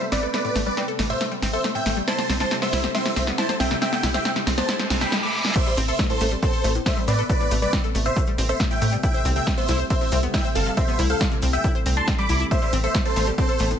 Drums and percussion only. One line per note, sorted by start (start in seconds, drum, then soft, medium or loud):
0.01 closed hi-hat soft
0.12 snare medium
0.12 open hi-hat medium
0.23 closed hi-hat soft
0.34 snare medium
0.34 closed hi-hat medium
0.45 closed hi-hat soft
0.56 snare medium
0.56 open hi-hat medium
0.66 closed hi-hat soft
0.77 snare medium
0.77 closed hi-hat medium
0.88 closed hi-hat soft
0.99 snare medium
0.99 open hi-hat medium
1.21 snare medium
1.21 closed hi-hat medium
1.32 closed hi-hat soft
1.42 snare medium
1.42 open hi-hat loud
1.53 closed hi-hat soft
1.64 snare medium
1.64 closed hi-hat medium
1.75 closed hi-hat soft
1.86 snare medium
1.86 open hi-hat medium
1.97 closed hi-hat soft
2.08 snare medium
2.08 closed hi-hat medium
2.19 snare medium
2.19 closed hi-hat soft
2.30 snare medium
2.30 open hi-hat medium
2.40 snare medium
2.40 closed hi-hat soft
2.51 snare medium
2.51 closed hi-hat medium
2.62 snare medium
2.62 closed hi-hat soft
2.73 snare loud
2.73 open hi-hat medium
2.84 snare medium
2.95 snare medium
2.95 closed hi-hat medium
3.06 snare medium
3.06 closed hi-hat soft
3.16 snare medium
3.16 open hi-hat loud
3.27 snare medium
3.27 closed hi-hat soft
3.38 snare loud
3.38 closed hi-hat medium
3.49 snare medium
3.49 closed hi-hat soft
3.60 snare loud
3.60 open hi-hat medium
3.71 snare medium
3.71 closed hi-hat soft
3.82 snare loud
3.82 closed hi-hat medium
3.93 snare medium
3.93 closed hi-hat soft
4.03 snare loud
4.03 open hi-hat loud
4.14 snare medium
4.14 closed hi-hat soft
4.25 snare loud
4.25 closed hi-hat medium
4.36 snare medium
4.36 closed hi-hat soft
4.47 snare loud
4.47 open hi-hat medium
4.58 snare medium
4.69 snare loud
4.69 closed hi-hat medium
4.79 snare medium
4.79 closed hi-hat soft
4.90 snare loud
4.90 open hi-hat loud
5.01 snare loud
5.01 closed hi-hat soft
5.12 snare loud
5.45 snare medium
5.56 kick loud
5.56 closed hi-hat medium
5.56 crash loud
5.56 cabasa medium
5.66 closed hi-hat medium
5.66 cabasa soft
5.77 open hi-hat loud
5.77 cabasa medium
5.88 closed hi-hat medium
5.88 cabasa soft
5.99 kick loud
5.99 snare loud
5.99 closed hi-hat medium
5.99 cabasa medium
6.09 closed hi-hat medium
6.09 cabasa soft
6.21 snare soft
6.21 open hi-hat loud
6.21 cabasa loud
6.32 closed hi-hat medium
6.32 cabasa soft
6.43 kick loud
6.43 closed hi-hat medium
6.43 cabasa medium
6.52 closed hi-hat medium
6.52 cabasa soft
6.64 open hi-hat loud
6.64 cabasa medium
6.75 closed hi-hat medium
6.75 cabasa soft
6.86 kick loud
6.86 snare loud
6.86 closed hi-hat medium
6.86 cabasa soft
6.97 closed hi-hat medium
6.97 cabasa soft
7.08 open hi-hat medium
7.08 cabasa loud
7.19 closed hi-hat medium
7.19 cabasa soft
7.30 kick loud
7.30 closed hi-hat medium
7.30 cabasa medium
7.41 closed hi-hat soft
7.41 cabasa soft
7.51 open hi-hat loud
7.51 cabasa medium
7.62 closed hi-hat medium
7.62 cabasa soft
7.73 kick loud
7.73 snare loud
7.73 closed hi-hat medium
7.73 cabasa soft
7.84 closed hi-hat medium
7.84 cabasa soft
7.95 open hi-hat loud
7.95 cabasa loud
8.05 closed hi-hat medium
8.05 cabasa soft
8.16 kick loud
8.16 closed hi-hat medium
8.16 cabasa medium
8.27 closed hi-hat medium
8.27 cabasa soft
8.38 open hi-hat loud
8.38 cabasa medium
8.49 closed hi-hat medium
8.49 cabasa soft
8.60 kick loud
8.60 snare loud
8.60 closed hi-hat medium
8.60 cabasa medium
8.71 closed hi-hat medium
8.71 cabasa soft
8.82 open hi-hat loud
8.82 cabasa loud
8.93 closed hi-hat medium
8.93 cabasa soft
9.03 kick loud
9.03 closed hi-hat medium
9.03 cabasa medium
9.14 closed hi-hat soft
9.14 cabasa soft
9.25 open hi-hat loud
9.25 cabasa loud
9.36 closed hi-hat soft
9.36 cabasa soft
9.47 kick loud
9.47 snare loud
9.47 closed hi-hat medium
9.47 cabasa medium
9.58 closed hi-hat medium
9.58 cabasa soft
9.68 snare soft
9.68 open hi-hat loud
9.68 cabasa loud
9.80 closed hi-hat soft
9.80 cabasa soft
9.90 kick loud
9.90 closed hi-hat medium
9.90 cabasa soft
10.01 closed hi-hat medium
10.01 cabasa soft
10.11 open hi-hat loud
10.11 cabasa medium
10.23 closed hi-hat medium
10.23 cabasa soft
10.34 kick loud
10.34 snare loud
10.34 closed hi-hat medium
10.34 cabasa medium
10.45 closed hi-hat soft
10.45 cabasa soft
10.55 open hi-hat loud
10.55 cabasa loud
10.66 closed hi-hat soft
10.66 cabasa soft
10.77 kick loud
10.77 closed hi-hat medium
10.77 cabasa medium
10.88 closed hi-hat soft
10.88 cabasa soft
10.99 open hi-hat loud
10.99 cabasa loud
11.09 closed hi-hat soft
11.09 cabasa soft
11.21 kick loud
11.21 snare loud
11.21 closed hi-hat medium
11.21 cabasa medium
11.32 closed hi-hat medium
11.32 cabasa soft
11.42 open hi-hat loud
11.42 cabasa loud
11.53 closed hi-hat soft
11.53 cabasa soft
11.64 kick loud
11.64 closed hi-hat medium
11.64 cabasa medium
11.75 closed hi-hat medium
11.75 cabasa soft
11.86 open hi-hat loud
11.86 cabasa loud
11.97 closed hi-hat medium
11.97 cabasa soft
12.08 kick loud
12.08 snare loud
12.08 closed hi-hat medium
12.08 cabasa medium
12.18 closed hi-hat soft
12.18 cabasa soft
12.29 open hi-hat loud
12.29 cabasa loud
12.40 closed hi-hat soft
12.40 cabasa soft
12.51 kick loud
12.51 closed hi-hat medium
12.51 cabasa soft
12.62 closed hi-hat soft
12.62 cabasa soft
12.73 open hi-hat loud
12.73 cabasa medium
12.84 closed hi-hat medium
12.84 cabasa soft
12.95 kick loud
12.95 snare loud
12.95 closed hi-hat medium
12.95 cabasa medium
13.05 closed hi-hat soft
13.05 cabasa soft
13.16 snare soft
13.16 open hi-hat medium
13.16 cabasa medium
13.27 closed hi-hat soft
13.27 cabasa soft
13.38 kick loud
13.38 closed hi-hat medium
13.38 cabasa medium
13.48 closed hi-hat medium
13.48 cabasa soft
13.59 open hi-hat loud
13.59 cabasa medium
13.71 closed hi-hat soft
13.71 cabasa soft